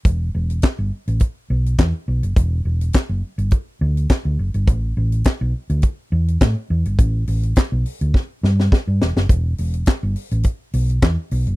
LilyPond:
<<
  \new Staff \with { instrumentName = "Fingered electric bass" } { \clef bass \time 4/4 \key e \dorian \tempo 4 = 104 e,,8 e,,8 r16 g,,16 r16 a,,16 r8 b,,8 e,16 r16 b,,16 fis,,16 | e,,8 e,,8 r16 fis,,16 r16 g,,16 r8 d,8 r16 d,16 fis,,16 g,,16 | a,,8 a,,8 r16 b,,16 r16 d,16 r8 e,8 a,16 r16 e,16 g,,16 | a,,8 a,,8 r16 b,,16 r16 d,16 r8 g,8 r16 g,16 e,,16 fis,,16 |
e,,8 e,,8 r16 g,,16 r16 a,,16 r8 b,,8 e,16 r16 b,,16 fis,,16 | }
  \new DrumStaff \with { instrumentName = "Drums" } \drummode { \time 4/4 <hh bd>8. hh16 <hc hh bd sn>8. hh16 <hh bd>8. hh16 <hc hh bd sn>8. hh16 | <hh bd>8. hh16 <hc hh bd sn>8. hh16 <hh bd>8. hh16 <hc hh bd sn>8. hh16 | <hh bd>8. hh16 <hc hh bd sn>8. hh16 <hh bd>8. hh16 <hc hh bd sn>8. hh16 | <hh bd>8 hho16 hh16 <hc hh bd sn>8 hho16 hh16 <bd sn>8 sn16 sn16 <bd sn>8 sn16 sn16 |
<hh bd>8 hho16 hh16 <hc hh bd sn>8 hho16 hh16 <hh bd>8 hho16 hh16 <hc hh bd sn>8 hho16 hh16 | }
>>